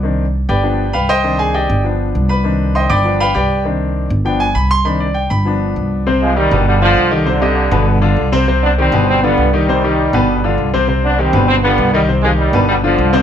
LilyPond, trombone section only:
\new Staff \with { instrumentName = "Trombone section" } { \clef bass \time 4/4 \key c \minor \tempo 4 = 199 << { r1 | r1 | r1 | r1 |
r1 | r8 aes8 g4 g8 f4 d8~ | d2.~ d8 r8 | r8 d'8 c'4 c'8 b4 g8~ |
g2.~ g8 r8 | r8 d'8 c'4 c'8 b4 g8 | r8 aes8 g4 g8 f4 d8 | } \\ { r1 | r1 | r1 | r1 |
r1 | r8 f8 ees4 d8 d4 g,8~ | g,2.~ g,8 r8 | r8 b8 g4 g8 g4 ees8~ |
ees2 r2 | r8 b8 g4 g8 g4 ees8 | r8 f8 ees4 d8 d4 b,8 | } >> }